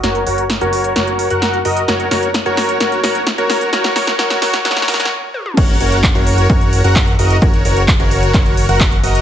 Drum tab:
CC |--------------------------------|--------------------------------|--------------------------------|x-------------------------------|
HH |x-x-o-x-x-x-o-x-x-x-o-x-x-x-o-x-|x-x-o-x-x-x-o-x-x-x-o-x-x-x-o-x-|x-x-o-x-x-x-o-x-x-x-o-x---------|x-x-o-x-x-x-o-x-x-x-o-x-x-x-o-x-|
CP |--------------------------------|--------------------------------|--------------------------------|--------x---------------x-------|
SD |o-------o-------o-------o-------|o---o---o---o---o---o---o---o---|o-o-o-o-o-o-o-o-oooooooo--------|--------------------------------|
T1 |--------------------------------|--------------------------------|----------------------------o---|--------------------------------|
T2 |--------------------------------|--------------------------------|------------------------------o-|--------------------------------|
BD |--------------------------------|--------------------------------|--------------------------------|o-------o-------o-------o-------|

CC |--------------------------------|
HH |x-x-o-x-x-x-o-x-x-x-o-x-x-x-o-x-|
CP |--------x-------x-------x-------|
SD |--------------------------------|
T1 |--------------------------------|
T2 |--------------------------------|
BD |o-------o-------o-------o-------|